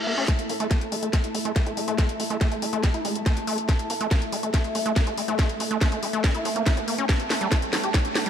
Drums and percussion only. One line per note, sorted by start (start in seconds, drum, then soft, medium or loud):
0.28 kick loud
0.28 snare soft
0.28 closed hi-hat medium
0.39 closed hi-hat medium
0.49 open hi-hat loud
0.60 closed hi-hat medium
0.71 kick loud
0.71 snare soft
0.71 closed hi-hat loud
0.81 closed hi-hat medium
0.92 open hi-hat loud
1.03 closed hi-hat medium
1.13 kick loud
1.13 snare soft
1.13 closed hi-hat loud
1.24 closed hi-hat medium
1.35 open hi-hat loud
1.45 closed hi-hat medium
1.56 kick loud
1.56 snare medium
1.56 closed hi-hat medium
1.66 closed hi-hat medium
1.77 open hi-hat loud
1.88 closed hi-hat medium
1.98 kick loud
1.98 snare medium
1.98 closed hi-hat medium
2.09 closed hi-hat medium
2.20 open hi-hat loud
2.30 closed hi-hat medium
2.41 kick loud
2.41 snare medium
2.41 closed hi-hat medium
2.52 closed hi-hat medium
2.62 open hi-hat loud
2.73 closed hi-hat medium
2.83 kick loud
2.83 snare medium
2.83 closed hi-hat medium
2.94 closed hi-hat medium
3.05 open hi-hat loud
3.15 closed hi-hat medium
3.26 kick loud
3.26 snare medium
3.26 closed hi-hat medium
3.37 closed hi-hat medium
3.47 open hi-hat loud
3.58 closed hi-hat medium
3.69 kick loud
3.69 snare medium
3.69 closed hi-hat medium
3.79 closed hi-hat medium
3.90 open hi-hat loud
4.01 closed hi-hat medium
4.11 kick loud
4.11 snare medium
4.11 closed hi-hat medium
4.22 closed hi-hat medium
4.32 open hi-hat loud
4.43 closed hi-hat soft
4.54 kick loud
4.54 snare medium
4.54 closed hi-hat medium
4.64 closed hi-hat soft
4.75 open hi-hat loud
4.86 closed hi-hat medium
4.96 kick loud
4.96 snare medium
4.96 closed hi-hat medium
5.07 closed hi-hat medium
5.18 open hi-hat loud
5.28 closed hi-hat medium
5.39 kick loud
5.39 snare medium
5.39 closed hi-hat medium
5.49 closed hi-hat medium
5.60 open hi-hat loud
5.71 closed hi-hat soft
5.81 kick loud
5.81 snare medium
5.81 closed hi-hat medium
5.92 closed hi-hat medium
6.03 open hi-hat loud
6.13 closed hi-hat soft
6.24 kick loud
6.24 snare medium
6.24 closed hi-hat medium
6.35 closed hi-hat soft
6.45 open hi-hat loud
6.56 closed hi-hat medium
6.66 kick loud
6.66 snare medium
6.66 closed hi-hat medium
6.77 closed hi-hat medium
6.88 open hi-hat loud
6.98 closed hi-hat soft
7.09 kick loud
7.09 snare medium
7.09 closed hi-hat medium
7.20 closed hi-hat medium
7.30 snare medium
7.30 open hi-hat loud
7.41 closed hi-hat medium
7.52 kick loud
7.52 snare medium
7.52 closed hi-hat medium
7.62 closed hi-hat medium
7.73 snare medium
7.73 open hi-hat loud
7.84 closed hi-hat medium
7.94 kick loud
7.94 snare medium
7.94 closed hi-hat medium
8.05 closed hi-hat soft
8.15 snare medium
8.15 open hi-hat loud
8.26 closed hi-hat medium